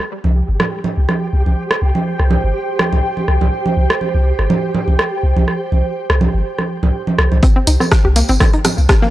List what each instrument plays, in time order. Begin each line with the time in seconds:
Already playing: ambient pad G4 G5, synth texture G4
0.24 sub bass C2, high conga
0.33 ambient pad C5
0.49 sub bass G1
0.60 cross-stick, high conga, low conga
0.84 low conga
0.97 sub bass C2
1.09 cross-stick, high conga
1.33 sub bass C2
1.46 sub bass C2, high conga
1.71 cross-stick
1.82 sub bass C2
1.95 high conga
2.19 sub bass C2, cross-stick
2.31 high conga, low conga
2.44 sub bass G1
2.79 cross-stick, high conga
2.93 sub bass C2, low conga
3.17 high conga
3.28 sub bass C2, cross-stick
3.41 sub bass C2, low conga
3.66 high conga
3.77 sub bass C2
3.90 cross-stick
4.01 high conga
4.15 sub bass C2
4.39 sub bass G1, cross-stick
4.50 high conga, low conga
4.75 low conga
4.88 sub bass C2, high conga
4.99 cross-stick
5.23 sub bass C2
5.37 sub bass C2, high conga
5.48 cross-stick
5.72 sub bass C2, high conga
6.10 sub bass C2, cross-stick
6.21 high conga, low conga
6.34 sub bass G1
6.58 cross-stick, high conga
6.83 sub bass C2, low conga
7.07 high conga
7.18 sub bass C2, cross-stick
7.32 sub bass C2, low conga
7.43 synth arpeggio sound C4, kick, closed hi-hat, tambourine
7.56 synth arpeggio sound C4
7.67 sub bass C2, synth arpeggio sound D#4, closed hi-hat, tambourine
7.80 synth arpeggio sound C4, cross-stick, tambourine, high conga
7.91 kick, cross-stick, snare, closed hi-hat, tambourine
8.05 sub bass C2, synth arpeggio sound G4
8.16 synth arpeggio sound A#3, snare, closed hi-hat, tambourine
8.29 sub bass G1, synth arpeggio sound C4, tambourine
8.40 synth arpeggio sound C4, kick, cross-stick, closed hi-hat, tambourine, high conga, low conga
8.53 synth arpeggio sound D#4, closed hi-hat
8.64 synth arpeggio sound C4, cross-stick, closed hi-hat, tambourine, low conga
8.78 sub bass C2, tambourine
8.89 synth arpeggio sound G4, kick, cross-stick, snare, closed hi-hat, tambourine
9.02 synth arpeggio sound A#3, snare, high conga